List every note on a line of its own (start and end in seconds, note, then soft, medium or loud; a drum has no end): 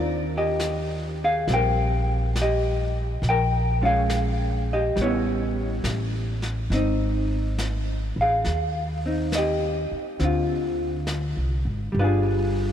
0.00 1.44 D#2 medium
0.00 3.22 D#3 soft
0.00 1.49 C4 soft
0.00 0.31 F4 medium
0.00 0.31 D5 medium
0.37 1.18 G4 medium
0.37 1.24 D#5 medium
0.60 snare soft
0.60 hi-hat pedal medium
1.24 1.50 G#4 medium
1.24 1.52 F5 medium
1.47 3.18 A#1 medium
1.47 3.23 G3 soft
1.47 3.24 C4 soft
1.47 brush sweep soft
1.47 snare soft
1.54 2.35 A#4 medium
1.54 2.35 G5 medium
2.36 snare soft
2.36 hi-hat pedal medium
2.42 3.22 G4 medium
2.42 3.28 D#5 medium
3.22 4.92 A#1 medium
3.22 brush sweep soft
3.22 snare soft
3.29 3.80 A#4 medium
3.29 3.85 G5 medium
3.82 4.95 G#3 soft
3.82 4.98 C#4 medium
3.82 3.86 F4 soft
3.82 4.66 F5 medium
3.86 4.66 G#4 medium
4.10 snare soft
4.10 hi-hat pedal soft
4.73 4.98 G4 medium
4.73 5.00 D#5 medium
4.96 5.80 A1 medium
4.96 6.70 G3 soft
4.96 brush sweep soft
4.96 snare soft
5.01 6.73 B3 medium
5.01 6.40 E4 medium
5.01 6.40 C#5 medium
5.06 6.74 C#4 medium
5.84 6.67 A1 medium
5.84 snare soft
5.84 hi-hat pedal medium
6.42 snare soft
6.70 8.11 G#1 medium
6.70 9.05 C4 medium
6.70 brush sweep soft
6.70 snare soft
6.74 9.06 D#4 medium
7.58 snare soft
7.58 hi-hat pedal soft
8.16 8.43 A1 medium
8.21 9.32 G#4 medium
8.21 9.31 F5 medium
8.45 9.87 D#2 medium
8.45 brush sweep soft
8.45 snare soft
9.06 10.19 C4 soft
9.06 9.37 D#4 soft
9.32 10.24 D#5 medium
9.32 snare soft
9.32 hi-hat pedal soft
9.38 10.18 G4 medium
9.91 muted upright bass stroke soft
10.19 11.32 D2 medium
10.19 11.95 D3 soft
10.19 11.95 C4 medium
10.19 brush sweep soft
10.19 snare soft
10.25 11.63 F4 medium
11.07 snare soft
11.07 hi-hat pedal soft
11.37 11.64 C2 soft
11.65 11.92 G#1 medium
11.92 12.72 G1 medium
11.92 12.72 G3 soft
11.92 brush sweep soft
11.99 12.72 D4 medium
11.99 12.72 F4 medium
11.99 12.04 B4 medium
12.04 12.72 G#4 medium